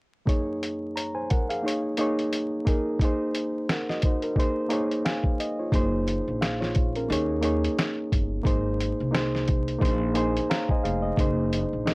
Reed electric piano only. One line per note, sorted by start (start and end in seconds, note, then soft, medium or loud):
0.25 1.40 F#2 medium
0.25 1.40 A#3 medium
0.25 1.41 D#4 medium
0.25 0.96 G#4 medium
0.25 0.95 C#5 medium
0.96 1.15 C#5 soft
0.96 1.14 A#5 soft
1.15 1.28 C5 medium
1.15 1.28 G#5 medium
1.30 1.49 A#4 soft
1.30 1.49 F#5 medium
1.49 1.64 G#4 soft
1.49 1.82 F5 medium
1.62 1.92 A#3 medium
1.62 1.93 D#4 medium
1.62 1.93 G#4 medium
1.62 1.94 C#5 medium
1.98 2.56 A#3 medium
1.98 2.56 D#4 medium
1.98 2.57 G#4 medium
1.98 2.57 C#5 medium
2.65 2.94 A#3 medium
2.65 2.95 D#4 medium
2.65 2.96 G#4 medium
2.65 2.96 A#4 medium
3.01 4.14 A#3 medium
3.01 3.69 D#4 medium
3.01 3.70 G#4 medium
3.01 3.70 C5 medium
3.70 3.89 A#4 soft
3.70 3.88 F#5 medium
3.90 4.03 F#4 medium
3.90 4.03 D#5 medium
4.06 4.23 D#4 medium
4.06 4.23 C5 medium
4.24 4.55 A#4 medium
4.36 4.65 A#3 medium
4.36 4.65 D#4 medium
4.36 4.66 G#4 medium
4.36 4.67 C5 medium
4.69 5.28 A#3 medium
4.69 5.28 D#4 medium
4.69 5.04 G#4 medium
4.69 5.06 C#5 medium
5.05 5.37 G#4 soft
5.05 5.37 F5 medium
5.05 5.69 G#5 medium
5.40 5.58 D#5 medium
5.59 5.92 F4 medium
5.59 5.91 C#5 medium
5.72 6.30 A#3 medium
5.72 6.31 D#4 medium
5.72 6.31 G#4 medium
5.72 6.32 C5 medium
6.41 6.60 G#4 soft
6.41 6.60 F5 medium
6.60 6.93 F4 medium
6.60 6.93 C#5 medium
6.96 7.28 C#4 medium
6.96 7.28 A#4 medium
7.09 7.38 A#3 medium
7.09 7.39 D#4 medium
7.09 7.39 G#4 medium
7.09 7.40 C#5 medium
7.41 8.29 A#3 medium
7.41 8.30 D#4 medium
7.41 8.30 G#4 medium
7.41 8.31 C#5 medium
8.43 9.02 A#3 medium
8.43 9.03 D#4 medium
8.43 9.04 G#4 medium
8.43 9.04 C5 medium
9.11 9.77 A#3 medium
9.11 9.79 D#4 medium
9.11 9.80 G#4 medium
9.11 9.81 C5 medium
9.79 10.09 A#3 medium
9.79 10.10 D#4 medium
9.79 10.11 G#4 medium
9.79 10.11 C5 medium
10.14 11.02 A#3 medium
10.14 11.02 D#4 medium
10.14 10.50 G#4 medium
10.14 10.51 C5 medium
10.14 10.47 G#5 medium
10.50 10.69 C#5 soft
10.50 10.69 F5 medium
10.50 10.69 A#5 medium
10.71 10.84 C5 medium
10.71 11.01 D#5 medium
10.71 10.84 G#5 medium
10.84 11.03 G#4 medium
10.84 11.03 F5 medium
11.03 11.36 D#5 medium
11.17 11.76 A#3 medium
11.17 11.76 D#4 medium
11.17 11.77 G#4 medium
11.17 11.77 C5 medium
11.84 11.93 G#3 medium
11.84 11.94 D#4 medium
11.84 11.94 G#4 medium
11.84 11.94 D#5 medium
11.91 11.94 A#3 medium